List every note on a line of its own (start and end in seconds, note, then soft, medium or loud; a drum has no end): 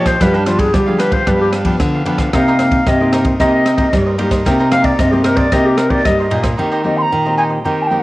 0.00 0.18 A#2 medium
0.00 0.16 F3 medium
0.00 0.16 A#3 medium
0.00 0.16 D4 medium
0.00 0.16 G4 medium
0.05 0.19 G4 soft
0.05 0.23 C5 medium
0.05 0.18 D5 soft
0.05 0.19 D#5 soft
0.05 kick medium
0.05 cross-stick medium
0.05 ride medium
0.20 0.71 G2 medium
0.20 0.36 F3 medium
0.20 0.66 G3 loud
0.20 0.36 B3 medium
0.20 0.33 D4 medium
0.20 0.37 D4 medium
0.20 0.33 G4 medium
0.20 0.33 B4 medium
0.20 0.37 B4 medium
0.20 0.33 F5 medium
0.20 kick medium
0.20 cross-stick medium
0.20 ride medium
0.34 0.43 D4 medium
0.34 0.48 D4 medium
0.34 0.43 G4 medium
0.34 0.43 B4 medium
0.34 0.43 F5 medium
0.46 0.82 F3 medium
0.46 0.82 B3 medium
0.46 0.85 D4 soft
0.46 0.83 D4 medium
0.46 0.61 F4 medium
0.46 0.86 G4 medium
0.46 0.86 B4 medium
0.46 0.85 F5 medium
0.46 cross-stick medium
0.46 ride medium
0.59 0.75 G#4 medium
0.59 kick medium
0.59 ride medium
0.74 1.24 D3 medium
0.74 1.19 G3 loud
0.74 0.90 G4 medium
0.74 kick medium
0.74 cross-stick medium
0.74 ride medium
0.87 1.23 F3 medium
0.87 1.23 B3 medium
0.87 1.23 D4 medium
0.87 0.98 G4 soft
0.87 1.01 G#4 medium
0.87 0.98 B4 medium
0.87 0.99 F5 medium
0.98 1.12 D4 medium
0.98 1.12 G4 medium
0.98 1.11 B4 medium
0.98 1.14 B4 medium
0.98 1.10 F5 medium
0.98 cross-stick medium
0.98 ride medium
1.11 1.26 G4 soft
1.11 1.25 B4 soft
1.11 1.29 C5 medium
1.11 1.25 F5 soft
1.11 kick medium
1.11 ride medium
1.27 1.77 G2 medium
1.27 1.63 F3 medium
1.27 1.72 G3 loud
1.27 1.63 B3 medium
1.27 1.51 D4 medium
1.27 1.63 D4 medium
1.27 1.52 G4 medium
1.27 1.41 B4 medium
1.27 1.52 B4 medium
1.27 1.53 F5 medium
1.27 kick medium
1.27 cross-stick medium
1.27 ride medium
1.41 1.49 G4 medium
1.52 1.64 D4 medium
1.52 1.64 G4 medium
1.52 1.65 B4 medium
1.52 1.65 F5 medium
1.52 cross-stick medium
1.52 ride medium
1.65 2.02 F3 medium
1.65 2.02 B3 medium
1.65 1.75 D4 medium
1.65 2.02 D4 medium
1.65 1.75 G4 medium
1.65 1.76 B4 medium
1.65 1.76 F5 medium
1.65 kick medium
1.65 ride soft
1.80 2.03 D3 medium
1.80 2.31 D3 medium
1.80 kick medium
1.80 cross-stick medium
1.80 ride medium
1.95 2.05 G4 soft
1.95 2.06 B4 soft
1.95 2.06 F5 medium
2.06 2.29 D3 medium
2.06 2.29 F3 medium
2.06 2.29 B3 medium
2.06 2.19 D4 medium
2.06 2.29 D4 medium
2.06 2.19 G4 medium
2.06 2.18 B4 medium
2.06 2.18 F5 medium
2.06 ride soft
2.18 2.32 G4 soft
2.18 2.32 B4 soft
2.18 2.32 F5 medium
2.18 kick medium
2.18 cross-stick medium
2.18 ride soft
2.33 2.84 C3 medium
2.33 2.78 C3 loud
2.33 2.56 A#3 medium
2.33 2.46 D#4 medium
2.33 2.56 D#4 medium
2.33 2.56 G4 medium
2.33 2.46 A#4 medium
2.33 2.46 C5 medium
2.33 2.46 D#5 medium
2.33 2.89 F5 medium
2.33 kick medium
2.33 cross-stick medium
2.33 ride medium
2.48 2.56 D#4 medium
2.48 2.56 A#4 medium
2.48 2.57 C5 medium
2.48 2.57 D#5 medium
2.59 2.84 A#3 medium
2.59 2.84 D#4 medium
2.59 2.99 D#4 medium
2.59 2.85 G4 medium
2.59 2.99 A#4 medium
2.59 2.99 C5 medium
2.59 2.99 D#5 medium
2.59 cross-stick medium
2.59 ride medium
2.71 kick medium
2.71 ride soft
2.86 3.37 G2 medium
2.86 3.32 C3 loud
2.86 3.12 D#5 medium
2.86 kick medium
2.86 cross-stick medium
2.86 ride soft
3.00 3.36 A#3 medium
3.00 3.36 D#4 medium
3.00 3.36 G4 medium
3.00 3.12 A#4 soft
3.00 3.12 C5 soft
3.00 3.13 D#5 medium
3.12 3.25 D#4 medium
3.12 3.25 A#4 medium
3.12 3.26 C5 medium
3.12 3.24 C5 medium
3.12 3.23 D#5 medium
3.12 cross-stick medium
3.12 ride medium
3.25 3.38 A#4 soft
3.25 3.38 C5 medium
3.25 3.38 D#5 medium
3.25 kick medium
3.25 ride medium
3.40 3.90 C3 medium
3.40 3.85 C3 medium
3.40 3.65 A#3 medium
3.40 3.64 D#4 medium
3.40 3.65 D#4 medium
3.40 3.65 G4 medium
3.40 3.64 A#4 medium
3.40 3.65 C5 medium
3.40 4.16 D#5 loud
3.40 3.65 D#5 medium
3.40 kick medium
3.40 cross-stick medium
3.40 ride soft
3.65 3.76 D#4 medium
3.65 3.76 A#4 medium
3.65 3.77 C5 medium
3.65 3.77 D#5 medium
3.65 cross-stick medium
3.65 ride medium
3.77 4.14 A#3 medium
3.77 3.87 D#4 medium
3.77 4.15 D#4 medium
3.77 4.15 G4 medium
3.77 3.88 A#4 medium
3.77 3.88 C5 medium
3.77 3.88 D#5 medium
3.77 kick medium
3.77 ride soft
3.93 4.44 G2 medium
3.93 4.15 G3 medium
3.93 kick medium
3.93 cross-stick medium
3.93 ride soft
4.06 4.18 A#4 soft
4.06 4.18 C5 soft
4.06 4.18 D#5 medium
4.18 4.41 G3 medium
4.18 4.41 A#3 medium
4.18 4.31 D#4 medium
4.18 4.41 D#4 medium
4.18 4.42 G4 medium
4.18 4.31 A#4 medium
4.18 4.30 C5 medium
4.18 4.29 D#5 medium
4.18 ride medium
4.31 4.45 A#4 soft
4.31 4.44 C5 soft
4.31 4.44 D#5 medium
4.31 kick medium
4.31 cross-stick medium
4.31 ride medium
4.45 4.97 C3 medium
4.45 4.91 C3 loud
4.45 4.62 A#3 medium
4.45 4.58 D#4 medium
4.45 4.62 D#4 medium
4.45 4.62 G4 medium
4.45 4.58 A#4 medium
4.45 4.58 C5 medium
4.45 4.59 D#5 medium
4.45 kick medium
4.45 cross-stick medium
4.45 ride medium
4.59 4.68 D#4 medium
4.59 4.69 A#4 medium
4.59 4.69 C5 medium
4.59 4.69 D#5 medium
4.71 5.07 A#3 medium
4.71 5.11 D#4 medium
4.71 5.08 D#4 medium
4.71 5.08 G4 medium
4.71 5.11 A#4 medium
4.71 5.11 C5 medium
4.71 5.11 D#5 medium
4.71 4.86 F5 loud
4.71 cross-stick medium
4.71 ride medium
4.84 5.01 D5 medium
4.84 kick medium
4.84 ride medium
4.98 5.49 G2 medium
4.98 5.44 C3 loud
4.98 5.14 D#5 medium
4.98 kick medium
4.98 cross-stick medium
4.98 ride medium
5.12 5.48 A#3 medium
5.12 5.48 D#4 medium
5.12 5.25 G4 medium
5.12 5.49 G4 medium
5.12 5.23 A#4 soft
5.12 5.24 C5 soft
5.12 5.24 D#5 medium
5.24 5.37 D#4 medium
5.24 5.38 A#4 medium
5.24 5.37 A#4 medium
5.24 5.36 C5 medium
5.24 5.35 D#5 medium
5.24 cross-stick medium
5.24 ride medium
5.37 5.51 A#4 soft
5.37 5.51 C5 soft
5.37 5.54 D5 medium
5.37 5.50 D#5 soft
5.37 kick medium
5.37 ride medium
5.52 6.03 C3 medium
5.52 5.98 C3 medium
5.52 5.77 A#3 medium
5.52 5.77 D#4 medium
5.52 5.78 G4 medium
5.52 5.77 A#4 medium
5.52 5.77 C5 medium
5.52 5.68 D#5 loud
5.52 5.78 D#5 medium
5.52 kick medium
5.52 cross-stick medium
5.52 ride medium
5.66 5.79 G4 medium
5.77 5.89 D#4 medium
5.77 5.92 A#4 medium
5.77 5.89 A#4 medium
5.77 5.89 C5 medium
5.77 5.90 D#5 medium
5.77 cross-stick medium
5.77 ride medium
5.90 6.27 A#3 medium
5.90 6.00 D#4 medium
5.90 6.27 D#4 medium
5.90 6.27 G4 medium
5.90 6.00 A#4 medium
5.90 6.00 C5 medium
5.90 6.05 D5 medium
5.90 6.01 D#5 medium
5.90 kick medium
5.90 ride medium
6.05 6.56 G2 medium
6.05 6.28 G3 medium
6.05 6.22 D#5 medium
6.05 kick medium
6.05 cross-stick medium
6.05 ride medium
6.19 6.30 A#4 soft
6.19 6.30 C5 soft
6.19 6.31 D#5 medium
6.30 6.54 A#2 medium
6.30 6.47 A#3 medium
6.30 6.44 D#4 medium
6.30 6.47 D#4 medium
6.30 6.47 G4 medium
6.30 6.43 A#4 medium
6.30 6.42 C5 medium
6.30 6.41 D#5 medium
6.30 ride medium
6.43 6.57 A#4 soft
6.43 6.57 C5 medium
6.43 6.56 D#5 medium
6.43 kick medium
6.43 cross-stick medium
6.43 ride medium
6.57 7.09 D#3 medium
6.57 7.04 D#3 loud
6.57 6.81 A#3 medium
6.57 6.81 C4 medium
6.57 6.70 D#4 medium
6.57 6.71 G4 medium
6.57 6.82 G4 medium
6.57 6.71 C5 medium
6.57 6.71 D#5 medium
6.71 6.81 D#4 medium
6.71 6.81 G4 medium
6.71 6.81 C5 medium
6.71 6.81 D#5 medium
6.83 7.10 A#3 medium
6.83 7.10 C4 medium
6.83 7.23 D#4 soft
6.83 7.23 G4 soft
6.83 7.10 G4 medium
6.83 7.24 C5 medium
6.83 6.99 D#5 medium
6.83 7.24 D#5 medium
6.97 7.03 C6 medium
7.02 7.37 A#5 loud
7.12 7.62 A#2 medium
7.12 7.57 D#3 medium
7.26 7.61 A#3 medium
7.26 7.61 C4 medium
7.26 7.62 G4 medium
7.26 7.37 G4 soft
7.26 7.37 C5 soft
7.26 7.38 D#5 soft
7.37 7.50 D#4 medium
7.37 7.50 G4 medium
7.37 7.49 C5 medium
7.37 7.48 D#5 medium
7.37 7.43 G#5 medium
7.49 7.64 G4 soft
7.49 7.63 C5 soft
7.49 7.63 D#5 soft
7.64 8.03 D#3 medium
7.64 7.87 A#3 medium
7.64 7.87 C4 medium
7.64 7.89 D#4 medium
7.64 7.90 G4 medium
7.64 7.88 G4 medium
7.64 7.90 C5 medium
7.64 7.90 D#5 medium
7.64 7.83 G5 medium
7.82 7.88 A5 medium
7.87 8.03 A#3 medium
7.87 8.02 D#4 soft
7.87 8.00 G5 medium
7.91 8.03 C4 medium
7.91 8.02 G4 soft
7.91 8.03 G4 medium
7.91 8.03 C5 medium
7.91 8.03 D#5 medium
7.99 8.03 F#5 medium